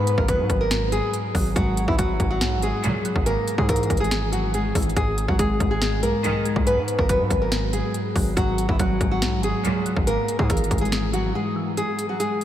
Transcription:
Already playing: synth keys G#2, 808-style bass G#2, nylon-string guitar B3 B4
0.07 synth keys G#2, closed hi-hat
0.18 808-style bass G#1, nylon-string guitar A#3 A#4, kick
0.28 synth keys F#3, nylon-string guitar B3 B4, kick, closed hi-hat
0.39 808-style bass G#2
0.50 808-style bass G#1, synth keys G#2, kick, closed hi-hat
0.61 nylon-string guitar A#3 A#4
0.71 synth keys G#2, snare, closed hi-hat
0.92 synth keys G#2, nylon-string guitar G#3 G#4, closed hi-hat
1.13 synth keys G#2, closed hi-hat
1.35 808-style bass G#1, synth keys F#3, kick, open hi-hat
1.56 808-style bass G#1, synth keys G#2, nylon-string guitar F#3 F#4, kick, closed hi-hat
1.76 synth keys G#2, closed hi-hat
1.88 808-style bass G#1, nylon-string guitar E3 E4, kick
1.98 synth keys F#3, nylon-string guitar F#3 F#4, kick, closed hi-hat
2.20 808-style bass G#1, synth keys G#2, kick, closed hi-hat
2.31 nylon-string guitar F#3 F#4
2.41 808-style bass B1, synth keys G#2, snare, closed hi-hat
2.57 808-style bass G#1
2.62 synth keys G#2, nylon-string guitar G#3 G#4, closed hi-hat
2.84 string section C#2 A#2 F#3, synth keys G#2, closed hi-hat
3.05 synth keys F#3, closed hi-hat
3.16 808-style bass G#1, kick
3.26 synth keys G#2, nylon-string guitar A#3 A#4, closed hi-hat
3.48 synth keys G#2, closed hi-hat
3.58 808-style bass G#2, nylon-string guitar G#3 G#4, kick
3.68 synth keys E3, nylon-string guitar A#3 A#4, kick, closed hi-hat
3.76 closed hi-hat
3.83 closed hi-hat
3.90 808-style bass G#1, synth keys G#2, kick, closed hi-hat
3.97 nylon-string guitar G#3 G#4, closed hi-hat
4.04 closed hi-hat
4.11 synth keys G#2, snare, closed hi-hat
4.32 synth keys G#2, nylon-string guitar F#3 F#4, closed hi-hat
4.54 synth keys G#2, nylon-string guitar G#3 G#4, closed hi-hat
4.75 808-style bass G#1, synth keys E3, kick, closed hi-hat, open hi-hat
4.82 closed hi-hat
4.89 closed hi-hat
4.96 808-style bass G#1, synth keys G#2, nylon-string guitar G#3 G#4, kick, closed hi-hat
5.17 synth keys G#2, closed hi-hat
5.28 808-style bass G#1, nylon-string guitar F#3 F#4, kick
5.39 synth keys G#3, nylon-string guitar G#3 G#4, kick, closed hi-hat
5.60 808-style bass G#1, synth keys G#2, kick, closed hi-hat
5.71 nylon-string guitar G#3 G#4
5.81 synth keys G#2, snare, closed hi-hat
6.03 808-style bass B1, synth keys G#2, nylon-string guitar A#3 A#4, closed hi-hat
6.24 string section B1 G#2 D#3, synth keys G#2, closed hi-hat
6.45 synth keys G#3, closed hi-hat
6.56 808-style bass B1, kick
6.67 synth keys G#2, nylon-string guitar B3 B4, closed hi-hat
6.77 808-style bass G#2
6.88 synth keys G#2, closed hi-hat
6.99 808-style bass G#1, nylon-string guitar A#3 A#4, kick
7.09 synth keys F#3, nylon-string guitar B3 B4, kick, closed hi-hat
7.20 808-style bass G#2
7.30 808-style bass G#1, synth keys G#2, kick, closed hi-hat
7.42 nylon-string guitar A#3 A#4
7.52 synth keys G#2, snare, closed hi-hat
7.73 synth keys G#2, nylon-string guitar G#3 G#4, closed hi-hat
7.94 synth keys G#2, closed hi-hat
8.16 808-style bass G#1, synth keys F#3, kick, open hi-hat
8.37 808-style bass G#1, synth keys G#2, nylon-string guitar F#3 F#4, kick, closed hi-hat
8.57 synth keys G#2, closed hi-hat
8.69 808-style bass G#1, nylon-string guitar E3 E4, kick
8.79 808-style bass G#1, synth keys F#3, nylon-string guitar F#3 F#4, kick, closed hi-hat
9.01 808-style bass G#1, synth keys G#2, kick, closed hi-hat
9.11 nylon-string guitar F#3 F#4
9.22 808-style bass B1, synth keys G#2, snare, closed hi-hat
9.38 808-style bass G#1
9.42 synth keys G#2, nylon-string guitar G#3 G#4, closed hi-hat
9.65 string section C#2 A#2 F#3, synth keys G#2, closed hi-hat
9.86 synth keys F#3, closed hi-hat
9.96 808-style bass G#1, kick
10.07 synth keys G#2, nylon-string guitar A#3 A#4, closed hi-hat
10.28 synth keys G#2, closed hi-hat
10.39 808-style bass G#2, nylon-string guitar G#3 G#4, kick
10.49 808-style bass G#1, synth keys E3, nylon-string guitar A#3 A#4, kick, closed hi-hat
10.57 closed hi-hat
10.64 closed hi-hat
10.71 808-style bass G#1, synth keys G#2, kick, closed hi-hat
10.78 nylon-string guitar G#3 G#4, closed hi-hat
10.85 closed hi-hat
10.92 synth keys G#2, snare, closed hi-hat
11.13 synth keys G#2, nylon-string guitar F#3 F#4, closed hi-hat
11.35 synth keys G#2, nylon-string guitar G#3 G#4
11.56 synth keys E3
11.77 nylon-string guitar G#3 G#4, closed hi-hat
11.99 closed hi-hat
12.09 nylon-string guitar F#3 F#4
12.20 nylon-string guitar G#3 G#4, closed hi-hat

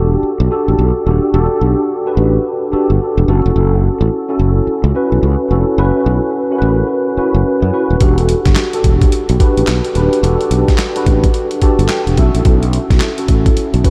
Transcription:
Already playing: fretless electric bass E1, tine electric piano D4 F#4 G4 A4
0.23 muted fretless electric bass stroke
0.40 fretless electric bass B1
0.51 tine electric piano D4 F#4 G4 A4
0.68 fretless electric bass A1
0.79 fretless electric bass B1
1.06 fretless electric bass D#1, tine electric piano D4 F#4 G4 A4
1.34 fretless electric bass E1, tine electric piano D4 F#4 G4 A4
1.61 fretless electric bass B1
2.06 tine electric piano D4 F#4 G4 B4
2.17 fretless electric bass A1
2.72 tine electric piano D4 F#4 G4 A4, muted fretless electric bass stroke
2.90 fretless electric bass G1
3.17 fretless electric bass E1
3.28 fretless electric bass F#1, tine electric piano C#4 E4 F#4 A4
3.46 fretless electric bass F1
3.56 fretless electric bass F#1
4.01 fretless electric bass A1
4.29 tine electric piano C#4 E4 F#4 A4
4.39 fretless electric bass F#1
4.67 muted fretless electric bass stroke
4.84 fretless electric bass C#2
4.95 tine electric piano C#4 E4 F#4 B4
5.12 fretless electric bass B1
5.23 fretless electric bass C#2
5.50 fretless electric bass F1, tine electric piano C#4 E4 F#4 A4
5.78 fretless electric bass F#1, tine electric piano C#4 E4 F#4 B4
6.06 fretless electric bass B1
6.51 tine electric piano C#4 E4 F#4 A#4
6.59 fretless electric bass A1, tine electric piano B4
7.17 tine electric piano C#4 E4 F#4 B4, muted fretless electric bass stroke
7.35 fretless electric bass F#1
7.62 fretless electric bass F#2
7.73 tine electric piano C#4 E4 F#4 B4
7.90 fretless electric bass D#1
8.00 fretless electric bass E1, tine electric piano D4 F#4 G4 A4, kick, closed hi-hat
8.18 closed hi-hat
8.29 closed hi-hat
8.45 fretless electric bass G1, kick, snare, closed hi-hat
8.55 snare, clap, closed hi-hat
8.73 tine electric piano D4 F#4 G4 A4, closed hi-hat
8.84 fretless electric bass E1, kick, closed hi-hat
9.01 kick, closed hi-hat
9.12 muted fretless electric bass stroke, closed hi-hat
9.29 fretless electric bass B1, closed hi-hat
9.40 tine electric piano D4 F#4 G4 B4, kick, closed hi-hat
9.57 fretless electric bass A1, closed hi-hat
9.67 fretless electric bass B1, snare, clap, closed hi-hat
9.85 closed hi-hat
9.95 fretless electric bass D#1, tine electric piano D4 F#4 G4 B4, closed hi-hat
10.13 closed hi-hat
10.22 fretless electric bass E1, tine electric piano D4 F#4 G4 A4, closed hi-hat
10.41 closed hi-hat
10.51 fretless electric bass B1, closed hi-hat
10.68 kick, snare, closed hi-hat
10.78 snare, clap, closed hi-hat
10.96 tine electric piano D4 F#4 G4 B4, closed hi-hat
11.06 fretless electric bass A1, kick, closed hi-hat
11.24 kick, closed hi-hat
11.34 closed hi-hat
11.51 closed hi-hat
11.62 tine electric piano D4 F#4 G4 A4 A5, muted fretless electric bass stroke, kick, closed hi-hat
11.79 fretless electric bass G1, closed hi-hat
11.88 tine electric piano G5, snare, clap, closed hi-hat
12.07 fretless electric bass E1, closed hi-hat
12.17 fretless electric bass B1, tine electric piano C#4 E4 F#4 A4 E5, kick, closed hi-hat
12.35 fretless electric bass A#1, closed hi-hat
12.45 fretless electric bass B1, kick, closed hi-hat
12.63 closed hi-hat
12.73 closed hi-hat
12.90 fretless electric bass B1, kick, snare, closed hi-hat
13.00 snare, clap, closed hi-hat
13.18 tine electric piano C#4 E4 F#4 A4, closed hi-hat
13.28 fretless electric bass A1, kick, closed hi-hat
13.46 kick, closed hi-hat
13.57 muted fretless electric bass stroke, closed hi-hat
13.74 fretless electric bass B1, closed hi-hat
13.84 tine electric piano C#4 E4 F#4 B4, kick, closed hi-hat

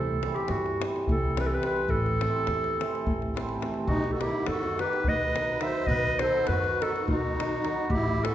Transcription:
Already playing: upright bass C2, clarinet A4
0.23 hammered dulcimer C3 E3 G3 C4, davul high
0.36 clarinet G4, davul high
0.48 upright bass G2, clarinet F#4, davul high
0.66 davul high
0.80 hammered dulcimer C3 E3 G3 C4, davul high
0.96 davul high
1.07 upright bass C2, clarinet A4, davul low
1.37 hammered dulcimer C3 E3 G3 C4, clarinet B4, davul high
1.46 clarinet A4
1.54 clarinet B4
1.63 hammered dulcimer C3 E3 G3 C4, clarinet B4, davul high
1.76 davul high
1.88 upright bass A1, clarinet A4, davul low
2.06 davul high
2.21 hammered dulcimer C3 E3 A3 C4, davul high
2.36 davul high
2.47 upright bass E2, davul high
2.64 davul high
2.80 hammered dulcimer C3 E3 A3 C4, davul high
2.95 davul high
3.06 upright bass A1, davul low
3.22 davul high
3.34 hammered dulcimer C3 E3 A3 C4, davul high
3.49 davul high
3.61 hammered dulcimer C3 E3 A3 C4, davul high
3.74 davul high
3.87 upright bass B1, accordion D#4, clarinet F#4, davul low
4.04 davul high
4.12 accordion F#4, clarinet A4
4.21 hammered dulcimer D#3 F#3 B3 D#4, accordion E4, clarinet G4, davul high
4.46 upright bass F#2, accordion F#4, clarinet A4, davul high
4.63 davul high
4.77 hammered dulcimer D#3 F#3 B3 D#4, accordion G4, clarinet B4, davul high
4.93 davul high
5.04 upright bass B1, accordion B4, clarinet D#5, davul low
5.36 hammered dulcimer D#3 F#3 B3 D#4, davul high
5.60 hammered dulcimer D#3 F#3 B3 D#4, accordion C5, clarinet E5, davul high
5.87 upright bass B1, accordion B4, clarinet D#5, davul low
6.03 davul high
6.19 hammered dulcimer D#3 F#3 B3 D#4, accordion A4, clarinet C5, davul high
6.47 upright bass F#2, accordion F#4, clarinet B4, davul high
6.64 davul high
6.80 hammered dulcimer D#3 F#3 B3 D#4, accordion F#4, clarinet A4, davul high
6.96 davul high
7.07 upright bass B1, accordion D#4, clarinet F#4, davul low
7.35 hammered dulcimer D#3 F#3 B3 D#4
7.40 davul high
7.61 hammered dulcimer D#3 F#3 B3 D#4, davul high
7.90 upright bass A1, accordion E4, clarinet G4, davul low
8.08 davul high
8.23 hammered dulcimer E3 A3 C4 E4, accordion F#4, clarinet A4, davul high

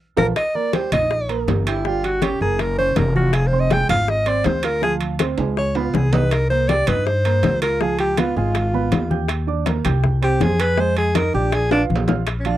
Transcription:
0.17 upright bass A#1, grand piano F4 A4 A#4, alto saxophone A#4, high bongo, high conga, high timbale
0.36 alto saxophone D#5, high bongo, high timbale
0.54 grand piano A#3 A#4 A#5, alto saxophone D5, high conga
0.73 grand piano G3 G4 G5, alto saxophone C5, high bongo, high conga, high timbale, low timbale
0.92 upright bass A#1, grand piano D#4 D#5 D#6, alto saxophone D#5, high bongo, high conga, low conga, high timbale
1.11 high bongo, high conga
1.28 grand piano A#3 A#4 A#5, high conga, high timbale
1.47 upright bass G1, high bongo, low bongo, high conga, high timbale, low timbale
1.66 alto saxophone E4, grand piano G4 G5 G6, high bongo, high conga, high timbale
1.85 grand piano G3 G4 G5, alto saxophone F4, high bongo, high conga
2.04 alto saxophone F#4, high conga, high timbale
2.22 grand piano C#4 C#5 C#6, alto saxophone G4, high bongo, high conga, high timbale, low timbale
2.40 upright bass F#1, grand piano A#3 A#4 A#5, alto saxophone G#4, high bongo, high conga
2.59 alto saxophone A#4, high bongo, high conga, high timbale
2.78 grand piano C#4 C#5 C#6, alto saxophone C5, high conga
2.96 upright bass F1, alto saxophone A#4, high bongo, low bongo, high conga, high timbale, low timbale
3.15 grand piano F4 F5 F6, alto saxophone F#4, high bongo, high conga
3.33 alto saxophone G#4, high bongo, high timbale
3.47 alto saxophone C5
3.52 grand piano C4 C5 C6, high conga
3.60 alto saxophone D#5
3.70 grand piano G#3 G#4 G#5, alto saxophone G5, high bongo, high conga, high timbale, low timbale
3.89 upright bass G#1, grand piano F4 F5 F6, alto saxophone F5, high bongo, high conga, low conga, high timbale
4.08 alto saxophone D#5, high bongo, high conga
4.26 grand piano C4 C5 C6, alto saxophone D5, high conga, high timbale
4.44 upright bass D2, alto saxophone C5, high bongo, low bongo, high conga, high timbale, low timbale
4.63 grand piano F4 F5 F6, alto saxophone A#4, high bongo, high conga, high timbale
4.82 grand piano F3 F4 F5, alto saxophone G#4, high bongo, high conga
5.01 high conga, high timbale
5.19 grand piano C4 C5 C6, high bongo, high conga, high timbale, low timbale
5.38 upright bass C#2, grand piano G#3 G#4 G#5, high bongo, high conga, high timbale
5.57 alto saxophone C#5, high bongo, high conga
5.75 grand piano B3 B4 B5, alto saxophone F4, high conga, high timbale
5.94 upright bass C2, alto saxophone G#4, high bongo, low bongo, high conga, low timbale
6.13 grand piano D#4 D#5 D#6, alto saxophone B4, high bongo, high conga, low timbale
6.31 alto saxophone A#4, high bongo, high conga, high timbale
6.50 grand piano A#3 A#4 A#5, alto saxophone C5, high conga
6.69 grand piano G3 G4 G5, alto saxophone D5, high bongo, high conga, high timbale, low timbale
6.87 upright bass G2, grand piano D#4 D#5 D#6, alto saxophone B4, high bongo, high conga, low conga, high timbale
7.06 alto saxophone C5, high bongo, high conga
7.25 grand piano A#3 A#4 A#5, high conga, high timbale
7.43 upright bass C#2, high bongo, low bongo, high conga, high timbale, low timbale
7.62 grand piano F4 F5 F6, alto saxophone A#4, high bongo, high conga, high timbale
7.81 grand piano F3 F4 F5, alto saxophone G#4, high bongo, high conga
7.99 alto saxophone G4, high conga, high timbale
8.17 grand piano B3 B4 B5, alto saxophone F4, high bongo, high conga, high timbale, low timbale
8.36 upright bass G#1, grand piano G#3 G#4 G#5, alto saxophone F4, high bongo, high conga
8.55 high bongo, high conga, high timbale
8.74 grand piano B3 B4 B5, high conga
8.91 upright bass D#2, high bongo, low bongo, high conga, high timbale, low timbale
9.10 grand piano G4 G5 G6, high bongo, high conga
9.28 high bongo, high timbale
9.47 grand piano D4 D5 D6, high conga
9.66 grand piano A#3 A#4 A#5, high bongo, high conga, high timbale, low timbale
9.85 upright bass C2, grand piano G4 G5 G6, high bongo, high conga, low conga, high timbale
10.04 high bongo, high conga, low conga
10.22 grand piano C4 C5 C6, alto saxophone G4, high conga, high timbale
10.41 upright bass F2, alto saxophone G#4, high bongo, low bongo, high conga, high timbale, low timbale
10.59 grand piano G#4 G#5 G#6, alto saxophone B4, high bongo, high conga, high timbale
10.77 grand piano G#3 G#4 G#5, alto saxophone C5, high bongo, high conga
10.97 alto saxophone G#4, high conga, high timbale
11.15 grand piano D#4 D#5 D#6, alto saxophone A#4, high bongo, high conga, high timbale, low timbale
11.33 upright bass A#1, grand piano D4 D5 D6, alto saxophone G4, high bongo, high conga
11.52 alto saxophone G#4, high bongo, high conga, high timbale
11.71 alto saxophone D4, grand piano F4 F5 F6, high bongo, high conga, high timbale
11.90 upright bass A#1, high conga
11.96 low timbale
12.08 grand piano F4 F5 F6, low bongo, high conga, low timbale
12.27 high bongo, high timbale
12.40 alto saxophone C#4
12.45 grand piano F3 F4 F5, alto saxophone D4, high conga, high timbale

